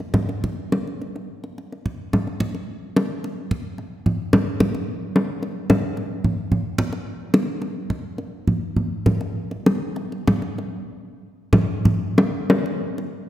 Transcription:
0.14 kendang high, kendang low
0.29 kendang slap
0.44 kendang low
0.72 kendang slap, kendang high
0.87 kendang slap
1.01 kendang slap
1.16 kendang slap
1.44 kendang slap
1.58 kendang slap
1.72 kendang slap
1.86 kendang low
2.13 kendang slap, kendang high, kendang low
2.27 kendang slap
2.40 kendang low
2.55 kendang slap
2.96 kendang high
3.24 kendang slap
3.51 kendang slap, kendang low
3.78 kendang slap
4.06 kendang low
4.33 kendang high, kendang low
4.60 kendang high, kendang low
4.75 kendang slap
5.16 kendang high
5.43 kendang slap
5.70 kendang slap, kendang high, kendang low
5.97 kendang slap
6.24 kendang low
6.52 kendang low
6.78 kendang low
6.93 kendang slap
7.34 kendang high
7.62 kendang slap
7.90 kendang slap, kendang low
8.18 kendang slap
8.48 kendang low
8.76 kendang low
9.06 kendang high, kendang low
9.21 kendang slap
9.51 kendang slap
9.66 kendang high
9.96 kendang slap
10.12 kendang slap
10.28 kendang slap, kendang high, kendang low
10.42 kendang slap
10.58 kendang slap
11.53 kendang high, kendang low
11.85 kendang low
12.18 kendang high
12.50 kendang high
12.66 kendang slap
12.98 kendang slap

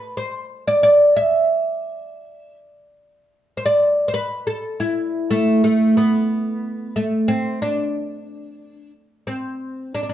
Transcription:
Already playing: B4
0.17 C5
0.67 D5
0.83 D5
1.16 E5
3.57 C5
3.65 D5
4.08 C5
4.14 B4
4.47 A4
4.80 E4
5.30 A3
5.64 A3
5.97 B3
6.96 A3
7.28 C4
7.62 D4
9.27 C4
9.95 D4
10.03 D4
10.09 D4

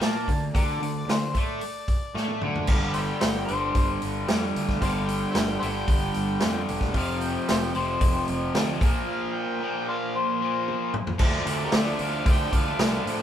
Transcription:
0.01 A#2 A#3 A5, snare, open hi-hat
0.27 D2 D3, kick, open hi-hat
0.55 D2 D3 G4 A#4 D5, kick, open hi-hat
0.80 D2 D3, open hi-hat
0.98 D5
1.07 D2, snare, open hi-hat
1.11 D3 C5
1.34 A2 A3, kick, open hi-hat
1.39 D5
1.61 open hi-hat
1.88 kick, open hi-hat
2.14 A2 A3, snare
2.28 high tom
2.41 D2 D3, mid tom
2.55 floor tom
2.67 G1 G2 D3 F5, kick, crash
2.72 G3
2.93 C5 E5 G5, open hi-hat
3.20 G1 C5 E5 G5, snare, open hi-hat
3.45 G3 C5, open hi-hat
3.50 G1 G2 D3
3.75 G1, kick, open hi-hat
4.02 G1, open hi-hat
4.28 F2 G2 D3, snare, open hi-hat
4.32 G3
4.56 D2, open hi-hat
4.69 kick, snare
4.81 G1 G2 D3 C5 D5 F5, kick, open hi-hat
4.87 G3
5.07 G5, open hi-hat
5.31 G1 C5 E5 G5, snare, open hi-hat
5.59 G1 G3 C5 E5 G5, open hi-hat
5.63 G2 D3
5.88 G1, kick, open hi-hat
6.14 G1, open hi-hat
6.40 F2 G2 D3, snare, open hi-hat
6.45 G3
6.69 E1, open hi-hat
6.81 kick, snare
6.93 F1 F2 C3 F5, kick, open hi-hat
6.97 F3
7.21 G5, open hi-hat
7.48 F1 C5 E5 G5, snare, open hi-hat
7.75 F1 C3 F3 C5, open hi-hat
7.79 F2
8.01 F1, kick, open hi-hat
8.28 F1, open hi-hat
8.54 D2 F2 C3 F3, snare, open hi-hat
8.80 A#1 A#2 F3 A#3, kick, open hi-hat
9.09 F5
9.35 G5
9.62 A#2 F3 A#3
9.89 C5 D5 F5
10.17 C5
10.41 A#2 F3 A#3
10.68 high tom
10.94 mid tom
11.07 floor tom
11.19 D2 D3 F3 A3 D4, kick, crash
11.23 D5
11.45 D2 A3 D4, open hi-hat
11.50 F3
11.65 G4 A#4 D5
11.72 D2 D3 F3, snare, open hi-hat
11.77 A3 D4
11.99 D2 A3 D4, open hi-hat
12.03 F3 F5
12.26 D2 D3 F3 A3 D4, kick, open hi-hat
12.31 G5
12.51 D2 A3 D4, kick, open hi-hat
12.55 F3 F5
12.79 C2 D3 F3 A3 D4, snare, open hi-hat
13.05 A2 F3 A3 D4, open hi-hat

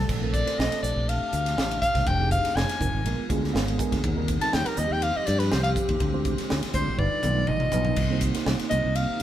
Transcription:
0.09 A#1 C3 A3 D4, kick, crash
0.20 A3 C4 D4 F4 A#4
0.32 D5, kick, hi-hat pedal, ride bell
0.46 A3 C4 D4 F4 C5, snare, ride bell
0.59 A#1 D#5, snare
0.72 snare, ride bell
0.83 A#1 D5, hi-hat pedal
0.96 A#1
1.09 F5, ride bell
1.22 muted fingered electric bass stroke
1.33 D2, hi-hat pedal, ride bell
1.46 snare, ride bell
1.57 A1, snare
1.71 ride bell
1.81 F5, kick, hi-hat pedal
1.95 C2, kick, snare, ride bell
2.07 F1 G5, kick, ride bell
2.18 C4 D#4 F4 G4 G#4
2.31 F5, kick, hi-hat pedal, ride bell
2.45 snare, ride bell
2.56 F1 G#5, snare
2.69 snare, ride bell
2.79 F1 G3 C4 D#4 F4 A#4, kick, hi-hat pedal
2.93 G#1
3.04 A#1 G#3 B3 D4 F4 A#4, ride bell
3.29 D2 G#3 B3 D4 F4 G#4, kick, hi-hat pedal, ride bell
3.44 snare
3.53 G#1 G#3 B3 D4 F4 A#4 F5, snare
3.68 ride bell
3.78 G#3 B3 D4 F4 A#4 G#5, kick, hi-hat pedal
3.92 D2, kick, snare, ride bell
4.04 D#2 F3 C4 G4, kick, ride bell
4.15 G3 C4 D#4 F4 A#4
4.28 kick, hi-hat pedal, ride bell
4.40 G3 C4 D#4 F4 A#4 A5, muted fingered electric bass stroke, snare, ride bell
4.53 D#2 G5, snare
4.66 A#4, muted fingered electric bass stroke, snare, ride bell
4.77 D#2 D#5, hi-hat pedal
4.91 D#2 G5
5.02 F5, ride bell
5.16 D#5, muted fingered electric bass stroke
5.27 G2 D5, hi-hat pedal, ride bell
5.39 B4, snare, ride bell
5.51 C2 C5, snare
5.63 F5, ride bell
5.76 kick, hi-hat pedal
5.89 D#2, kick, ride bell
6.00 D2, kick, ride bell
6.12 G#3 C4 D4 F4 C5
6.25 kick, hi-hat pedal, ride bell
6.38 snare, ride bell
6.50 D2, snare
6.63 muted fingered electric bass stroke, snare, ride bell
6.73 D2 G#3 C4 D4 F4 C5 D5, kick, hi-hat pedal
6.88 A1
6.97 G1 G3 D4 D#4 F4 B4 D5, kick
7.22 B1 G3 D4 D#4 F4 B4, hi-hat pedal, mid tom
7.46 A1 G3 D4 D#4 F4 D5 D#5, mid tom
7.60 mid tom
7.72 B1 G3 D4 D#4 F4 B4, floor tom, hi-hat pedal
7.85 floor tom
7.96 C2 C3 A#3 D#4, kick, ride bell, crash, muted conga
8.10 A#3 C4 D#4 G4 C5
8.21 kick, hi-hat pedal, ride bell
8.34 A#3 C4 D#4 G4 C5, snare, ride bell
8.46 C2, snare
8.59 snare, ride bell
8.70 C2 D#5, hi-hat pedal, high conga
8.85 C2
8.95 F5, ride bell, muted conga
9.10 muted fingered electric bass stroke

